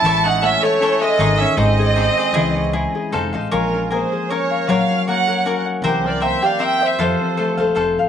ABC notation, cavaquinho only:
X:1
M:3/4
L:1/8
Q:"Swing" 1/4=156
K:C#m
V:1 name="Cavaquinho"
[EAce]2 [EAce] [Ace] [EAce] [Ace] | [DGcd]2 [DG^Bd]2 [DGBd] [GBd] | [EG]2 [EG]2 [_EA=c=f] [Acf] | [K:Bbm] [Bdfa]2 [Bfa]2 [Bdfa]2 |
[GBd]2 [GBdg] [Bdg] [GBdg]2 | [Bc=e=g]2 [Bceg] [ceg] [Bceg] [ceg] | [F=Acf]2 [FAcf] [Acf] [FAcf]2 |]